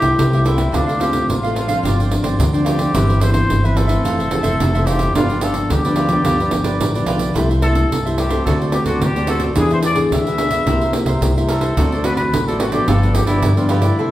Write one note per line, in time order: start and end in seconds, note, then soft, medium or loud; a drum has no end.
0.00 0.15 C2 medium
0.00 0.16 C3 medium
0.00 0.27 G3 soft
0.00 0.28 A3 medium
0.00 0.28 E4 medium
0.00 0.46 G4 medium
0.00 0.31 C5 medium
0.00 0.31 E5 medium
0.00 0.30 G5 medium
0.00 pandeiro medium
0.18 0.66 C2 medium
0.18 0.71 C3 soft
0.18 pandeiro medium
0.33 0.70 G3 soft
0.33 0.70 A3 medium
0.33 0.70 E4 medium
0.33 0.44 C5 soft
0.33 0.45 E5 soft
0.33 0.45 G5 medium
0.33 pandeiro soft
0.45 0.76 E4 medium
0.45 0.58 A4 medium
0.45 0.58 C5 medium
0.45 0.57 E5 medium
0.45 0.55 G5 medium
0.45 pandeiro medium
0.57 0.72 C5 soft
0.57 0.72 E5 soft
0.57 0.71 G5 soft
0.57 pandeiro medium
0.72 1.21 D2 medium
0.72 1.26 D3 medium
0.72 0.90 A3 medium
0.72 0.90 C4 medium
0.72 0.86 D4 medium
0.72 1.03 D4 medium
0.72 0.90 F4 medium
0.72 0.86 A4 medium
0.72 0.87 C5 medium
0.72 0.85 F5 medium
0.72 pandeiro medium
0.87 0.99 A4 soft
0.87 0.99 C5 soft
0.87 0.99 F5 soft
0.87 pandeiro soft
0.99 1.38 A3 soft
0.99 1.38 C4 medium
0.99 1.10 D4 medium
0.99 1.38 F4 medium
0.99 1.29 G4 medium
0.99 1.11 A4 medium
0.99 1.11 C5 medium
0.99 1.11 F5 medium
0.99 pandeiro medium
1.12 muted cavaquinho stroke soft
1.12 pandeiro medium
1.28 1.76 A1 medium
1.28 1.81 A2 medium
1.28 2.36 F4 medium
1.28 pandeiro medium
1.43 1.67 A3 medium
1.43 1.67 C4 medium
1.43 1.67 F4 medium
1.43 1.55 A4 soft
1.43 1.55 C5 soft
1.43 1.56 F5 medium
1.43 pandeiro soft
1.55 1.69 D4 medium
1.55 1.68 A4 soft
1.55 1.68 C5 soft
1.55 1.67 F5 medium
1.55 pandeiro medium
1.67 2.06 F3 medium
1.67 2.06 C4 medium
1.67 2.06 D4 medium
1.67 1.83 A4 medium
1.67 1.82 C5 medium
1.67 1.82 F5 medium
1.67 pandeiro medium
1.83 2.19 G1 medium
1.83 2.37 G2 medium
1.83 1.96 F4 medium
1.83 1.97 G4 medium
1.83 1.97 C5 medium
1.83 1.97 D5 medium
1.83 pandeiro medium
2.00 2.09 G4 soft
2.00 2.10 C5 soft
2.00 2.10 D5 soft
2.00 pandeiro soft
2.10 2.48 F3 medium
2.10 2.49 C4 medium
2.10 2.49 D4 medium
2.10 muted cavaquinho stroke soft
2.10 pandeiro medium
2.23 2.36 G1 medium
2.23 2.52 G4 medium
2.23 2.51 C5 medium
2.23 2.51 D5 medium
2.23 pandeiro medium
2.39 2.86 D2 medium
2.39 2.92 D3 soft
2.39 pandeiro medium
2.53 2.90 F3 medium
2.53 2.91 C4 medium
2.53 2.91 D4 medium
2.53 2.64 G4 soft
2.53 2.65 C5 soft
2.53 2.66 D5 soft
2.53 pandeiro soft
2.64 2.79 F4 medium
2.64 2.78 G4 medium
2.64 3.23 G4 medium
2.64 2.78 C5 medium
2.64 2.77 D5 medium
2.64 pandeiro medium
2.78 2.93 G4 soft
2.78 2.93 C5 soft
2.78 2.92 D5 soft
2.78 pandeiro medium
2.94 3.41 G1 medium
2.94 3.47 G2 medium
2.94 3.18 E3 medium
2.94 3.18 B3 medium
2.94 3.19 C4 medium
2.94 3.07 E4 medium
2.94 3.07 B4 medium
2.94 3.07 C5 medium
2.94 3.07 E5 medium
2.94 pandeiro medium
3.08 3.21 B4 soft
3.08 3.20 C5 soft
3.08 3.21 E5 soft
3.08 pandeiro soft
3.20 3.59 E3 medium
3.20 3.59 B3 medium
3.20 3.59 C4 medium
3.20 3.32 E4 medium
3.20 3.33 B4 medium
3.20 3.32 C5 medium
3.20 3.33 E5 medium
3.20 pandeiro medium
3.33 3.67 C5 medium
3.33 muted cavaquinho stroke soft
3.33 pandeiro medium
3.50 3.97 G1 medium
3.50 4.02 G2 medium
3.50 pandeiro medium
3.64 3.87 E3 medium
3.64 3.88 B3 medium
3.64 3.88 C4 medium
3.64 3.76 B4 soft
3.64 3.79 B4 medium
3.64 3.75 C5 soft
3.64 3.76 E5 soft
3.64 pandeiro soft
3.76 3.89 E4 soft
3.76 4.88 A4 medium
3.76 3.88 B4 medium
3.76 3.88 C5 soft
3.76 3.86 E5 soft
3.76 pandeiro medium
3.88 4.27 E3 medium
3.88 4.28 A3 medium
3.88 4.28 C4 medium
3.88 4.03 B4 medium
3.88 4.03 C5 soft
3.88 4.02 E5 medium
3.88 pandeiro medium
4.05 4.40 F1 medium
4.05 4.57 F2 medium
4.05 4.17 F4 medium
4.05 4.18 A4 medium
4.05 4.18 C5 medium
4.05 4.18 E5 medium
4.05 pandeiro medium
4.19 4.30 A4 soft
4.19 4.30 C5 soft
4.19 4.30 E5 soft
4.19 pandeiro soft
4.31 4.69 E3 medium
4.31 4.69 A3 medium
4.31 4.70 C4 medium
4.31 muted cavaquinho stroke soft
4.31 pandeiro medium
4.43 4.57 F1 medium
4.43 4.72 A4 medium
4.43 4.71 C5 medium
4.43 4.71 E5 medium
4.43 pandeiro medium
4.60 5.07 F1 medium
4.60 5.13 C3 soft
4.60 pandeiro medium
4.75 5.12 E3 medium
4.75 5.12 A3 medium
4.75 5.12 C4 medium
4.75 4.85 A4 soft
4.75 4.86 C5 soft
4.75 4.86 E5 medium
4.75 pandeiro soft
4.86 5.00 F4 medium
4.86 5.15 G4 medium
4.86 4.99 A4 medium
4.86 4.98 C5 medium
4.86 4.97 E5 medium
4.86 pandeiro medium
4.98 5.13 A4 soft
4.98 5.13 C5 soft
4.98 5.13 E5 soft
4.98 pandeiro medium
5.15 5.62 G1 medium
5.15 5.68 G2 medium
5.15 5.31 F3 medium
5.15 5.32 B3 medium
5.15 5.32 D4 medium
5.15 5.44 F4 medium
5.15 5.28 F4 medium
5.15 5.28 G4 medium
5.15 5.29 B4 medium
5.15 5.28 D5 medium
5.15 pandeiro medium
5.29 5.41 G4 soft
5.29 5.41 B4 soft
5.29 5.42 D5 soft
5.29 pandeiro soft
5.41 5.79 F3 soft
5.41 5.79 B3 medium
5.41 5.80 D4 medium
5.41 5.54 F4 medium
5.41 5.54 G4 medium
5.41 5.74 A4 medium
5.41 5.54 B4 medium
5.41 5.54 D5 medium
5.41 pandeiro medium
5.54 muted cavaquinho stroke soft
5.54 pandeiro medium
5.70 6.17 D2 medium
5.70 6.23 D3 soft
5.70 7.09 G4 medium
5.70 pandeiro medium
5.85 6.08 F3 medium
5.85 6.08 B3 medium
5.85 6.08 D4 medium
5.85 5.96 G4 soft
5.85 5.96 B4 soft
5.85 5.97 D5 soft
5.85 pandeiro soft
5.96 6.10 F4 medium
5.96 6.10 G4 soft
5.96 6.10 B4 soft
5.96 6.08 D5 medium
5.96 pandeiro medium
6.09 6.20 F3 medium
6.09 6.20 B3 medium
6.09 6.20 D4 medium
6.09 6.24 G4 soft
6.09 6.24 B4 medium
6.09 6.23 D5 medium
6.09 pandeiro medium
6.24 6.48 D2 medium
6.24 6.78 G2 medium
6.24 6.49 F3 medium
6.24 6.49 B3 medium
6.24 6.49 D4 medium
6.24 6.38 F4 medium
6.24 6.38 G4 medium
6.24 6.39 B4 medium
6.24 6.38 D5 medium
6.24 pandeiro medium
6.39 6.50 G4 soft
6.39 6.51 B4 soft
6.39 6.51 D5 soft
6.39 pandeiro soft
6.51 6.77 G1 medium
6.51 6.89 F3 soft
6.51 6.90 B3 medium
6.51 6.90 D4 medium
6.51 muted cavaquinho stroke soft
6.51 pandeiro medium
6.64 6.93 G4 soft
6.64 6.92 B4 medium
6.64 6.92 D5 medium
6.64 pandeiro medium
6.80 7.05 A1 medium
6.80 7.33 D3 soft
6.80 pandeiro medium
6.95 7.32 F3 medium
6.95 7.32 B3 medium
6.95 7.32 D4 medium
6.95 7.05 G4 soft
6.95 7.06 B4 soft
6.95 7.07 D5 soft
6.95 pandeiro soft
7.06 7.32 B1 medium
7.06 7.20 F4 medium
7.06 7.19 G4 medium
7.06 7.18 B4 medium
7.06 7.17 D5 medium
7.06 pandeiro medium
7.18 7.34 G4 soft
7.18 7.33 B4 soft
7.18 7.33 D5 soft
7.18 pandeiro medium
7.34 7.83 C2 medium
7.34 7.89 C3 soft
7.34 7.52 G3 medium
7.34 7.52 A3 medium
7.34 7.48 E4 medium
7.34 7.53 E4 medium
7.34 7.48 A4 medium
7.34 7.48 C5 medium
7.34 7.48 E5 medium
7.34 pandeiro medium
7.49 7.61 A4 soft
7.49 7.61 C5 soft
7.49 7.62 E5 soft
7.49 pandeiro soft
7.62 7.89 G3 medium
7.62 7.89 A3 medium
7.62 7.73 E4 medium
7.62 7.89 E4 medium
7.62 8.11 A4 medium
7.62 7.73 A4 medium
7.62 7.74 C5 medium
7.62 7.74 E5 medium
7.62 pandeiro medium
7.74 muted cavaquinho stroke soft
7.74 pandeiro medium
7.91 8.38 C2 medium
7.91 8.44 G2 medium
7.91 pandeiro medium
8.06 8.29 G3 medium
8.06 8.29 A3 medium
8.06 8.29 E4 medium
8.06 8.17 A4 soft
8.06 8.18 C5 soft
8.06 8.18 E5 soft
8.06 pandeiro soft
8.11 8.20 A4 soft
8.18 8.31 E4 soft
8.18 8.44 G4 medium
8.18 8.30 A4 soft
8.18 8.29 C5 medium
8.18 8.28 E5 soft
8.18 pandeiro medium
8.29 8.68 A3 medium
8.29 8.68 C4 medium
8.29 8.69 F#4 medium
8.29 8.44 A4 soft
8.29 8.44 C5 medium
8.29 8.44 E5 medium
8.29 pandeiro soft
8.45 8.81 D2 medium
8.45 8.99 D3 medium
8.45 8.59 F#4 medium
8.45 8.58 A4 medium
8.45 8.60 A4 medium
8.45 8.60 C5 medium
8.45 8.60 D5 medium
8.45 pandeiro medium
8.61 8.72 A4 soft
8.61 8.72 C5 soft
8.61 8.73 D5 soft
8.61 pandeiro soft
8.72 9.10 A3 medium
8.72 9.10 C4 medium
8.72 9.10 F#4 medium
8.72 8.86 G4 medium
8.72 muted cavaquinho stroke soft
8.72 pandeiro medium
8.85 8.98 D2 medium
8.85 9.05 F#4 medium
8.85 9.14 A4 medium
8.85 9.14 C5 medium
8.85 9.13 D5 medium
8.85 pandeiro medium
9.01 9.48 D2 medium
9.01 9.54 A2 medium
9.01 9.29 G4 medium
9.01 pandeiro medium
9.16 9.52 A3 medium
9.16 9.53 C4 medium
9.16 9.53 F#4 medium
9.16 9.27 A4 soft
9.16 9.28 C5 soft
9.16 9.28 D5 soft
9.16 pandeiro soft
9.27 9.41 F#4 medium
9.27 9.41 A4 medium
9.27 9.42 A4 medium
9.27 9.42 C5 medium
9.27 9.40 D5 medium
9.27 pandeiro medium
9.40 9.56 A4 soft
9.40 9.56 C5 soft
9.40 9.55 D5 soft
9.40 pandeiro medium
9.56 10.03 E2 medium
9.56 10.09 E3 medium
9.56 9.82 B3 medium
9.56 9.69 D4 medium
9.56 9.83 D4 soft
9.56 9.83 G#4 medium
9.56 9.70 G#4 medium
9.56 9.71 G#4 medium
9.56 9.70 B4 medium
9.56 9.70 E5 medium
9.56 pandeiro medium
9.70 9.83 G#4 soft
9.70 9.83 B4 soft
9.70 9.79 C5 medium
9.70 9.84 E5 soft
9.70 pandeiro soft
9.83 9.95 D4 medium
9.83 9.96 G#4 medium
9.83 9.96 B4 medium
9.83 9.98 D5 medium
9.83 9.96 E5 medium
9.83 pandeiro medium
9.95 10.33 B3 medium
9.95 10.33 D4 medium
9.95 10.34 G#4 medium
9.95 muted cavaquinho stroke soft
9.95 pandeiro medium
10.11 10.58 D2 medium
10.11 10.64 B2 medium
10.11 11.19 E5 medium
10.11 pandeiro medium
10.26 10.38 G#4 soft
10.26 10.38 B4 soft
10.26 10.39 E5 soft
10.26 pandeiro soft
10.38 10.64 B3 soft
10.38 10.51 D4 medium
10.38 10.64 D4 medium
10.38 10.64 G#4 medium
10.38 10.52 G#4 medium
10.38 10.52 B4 medium
10.38 10.51 E5 soft
10.38 pandeiro medium
10.51 10.66 G#4 soft
10.51 10.66 B4 medium
10.51 10.65 E5 medium
10.51 pandeiro medium
10.66 11.02 C2 medium
10.66 11.19 C3 medium
10.66 10.83 A#3 medium
10.66 10.83 E4 medium
10.66 10.81 E4 medium
10.66 10.84 G4 medium
10.66 10.81 A#4 medium
10.66 10.81 C5 medium
10.66 pandeiro medium
10.70 10.81 E5 medium
10.81 10.94 A#4 soft
10.81 10.94 C5 soft
10.81 10.94 E5 soft
10.81 pandeiro soft
10.93 11.17 A#3 medium
10.93 11.17 E4 soft
10.93 11.17 G4 soft
10.93 muted cavaquinho stroke soft
10.93 pandeiro medium
11.05 11.18 C2 medium
11.05 11.35 A#4 medium
11.05 11.35 C5 medium
11.05 11.34 E5 medium
11.05 pandeiro medium
11.21 11.68 C2 medium
11.21 11.74 G2 soft
11.21 11.30 A#3 soft
11.21 11.30 E4 soft
11.21 11.31 G4 medium
11.21 pandeiro medium
11.36 11.73 A#3 medium
11.36 11.73 E4 medium
11.36 11.74 G4 medium
11.36 11.48 A#4 soft
11.36 11.49 C5 soft
11.36 11.49 E5 soft
11.36 pandeiro soft
11.49 11.62 E4 medium
11.49 12.07 A4 medium
11.49 11.62 A#4 medium
11.49 11.61 C5 medium
11.49 11.60 E5 medium
11.49 pandeiro medium
11.61 11.76 A#4 soft
11.61 11.75 C5 soft
11.61 11.75 E5 medium
11.61 pandeiro medium
11.77 12.24 D2 medium
11.77 12.30 D3 medium
11.77 11.94 A3 medium
11.77 11.94 C4 medium
11.77 11.90 F#4 medium
11.77 11.94 F#4 medium
11.77 11.91 A4 medium
11.77 11.91 C5 medium
11.77 11.91 D5 medium
11.77 pandeiro medium
11.92 12.03 A4 soft
11.92 12.04 C5 soft
11.92 12.05 D5 soft
11.92 pandeiro soft
12.04 12.30 A3 medium
12.04 12.30 C4 medium
12.04 12.16 F#4 medium
12.04 12.31 F#4 medium
12.04 12.16 A4 medium
12.04 12.15 B4 loud
12.04 12.17 C5 medium
12.04 12.17 D5 medium
12.04 pandeiro medium
12.16 12.43 B4 medium
12.16 muted cavaquinho stroke soft
12.16 pandeiro medium
12.32 12.79 A1 medium
12.32 12.85 A2 medium
12.32 pandeiro medium
12.48 12.70 A3 medium
12.48 12.70 C4 medium
12.48 12.71 F#4 medium
12.48 12.61 A4 medium
12.48 12.59 A4 soft
12.48 12.60 C5 soft
12.48 12.60 D5 soft
12.48 pandeiro soft
12.60 12.74 F#4 medium
12.60 12.73 F#4 soft
12.60 12.73 A4 medium
12.60 12.73 C5 medium
12.60 12.71 D5 medium
12.60 pandeiro medium
12.72 13.24 F3 medium
12.72 13.24 B3 medium
12.72 13.25 D4 medium
12.72 12.91 G4 medium
12.72 12.87 A4 medium
12.72 12.86 C5 soft
12.72 12.86 D5 medium
12.72 pandeiro medium
12.87 13.23 G1 medium
12.87 13.41 G2 medium
12.87 13.00 F4 medium
12.87 13.01 G4 medium
12.87 13.16 A4 medium
12.87 13.01 B4 medium
12.87 13.01 D5 medium
12.87 pandeiro medium
13.02 13.13 G4 soft
13.02 13.14 B4 soft
13.02 13.14 D5 soft
13.02 pandeiro soft
13.14 13.26 G4 medium
13.14 muted cavaquinho stroke soft
13.14 pandeiro medium
13.26 13.39 G1 medium
13.26 13.51 F3 medium
13.26 13.51 B3 medium
13.26 13.52 D4 medium
13.26 13.59 E4 medium
13.26 13.55 G4 medium
13.26 13.54 B4 medium
13.26 13.54 D5 medium
13.26 pandeiro medium
13.42 13.89 G2 medium
13.42 13.95 D3 medium
13.42 pandeiro medium
13.57 13.80 F3 medium
13.57 13.80 B3 medium
13.57 13.80 D4 medium
13.57 13.68 F4 medium
13.57 13.69 G4 soft
13.57 13.69 B4 soft
13.57 13.69 D5 medium
13.57 pandeiro soft
13.69 14.11 E4 medium
13.69 13.82 F4 medium
13.69 13.83 G4 medium
13.69 13.82 B4 medium
13.69 13.81 D5 medium
13.69 pandeiro medium
13.81 14.11 G3 soft
13.81 14.11 A3 medium
13.81 14.11 E4 medium
13.81 13.97 G4 soft
13.81 13.96 B4 soft
13.81 13.96 D5 medium
13.81 pandeiro medium
13.98 14.11 C3 medium
13.98 14.11 E4 medium
13.98 14.11 A4 medium
13.98 14.11 C5 medium
13.98 14.11 E5 medium